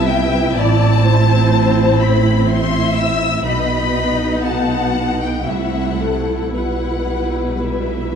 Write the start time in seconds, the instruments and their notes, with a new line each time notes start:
Already playing: double bass section C2, cello section C3, viola section B3 E4, violin section E5
0.08 violin section G5
0.55 double bass section A1, cello section A2, viola section C4, violin section D5 A5
1.04 violin section C5
2.00 violin section B5
2.50 violin section E5 C6
2.97 violin section E6
3.43 double bass section B1, cello section B2, viola section B3 D#4, violin section D#5 B5
4.44 violin section F#5 A5
5.20 violin section G5
5.45 double bass section C2, cello section C3, viola section A3 E4, violin section E5 F#5
5.99 violin section A4
6.51 double bass section B1, cello section B2, viola section G3, violin section B4 F#5
7.55 violin section F#5
7.62 violin section E5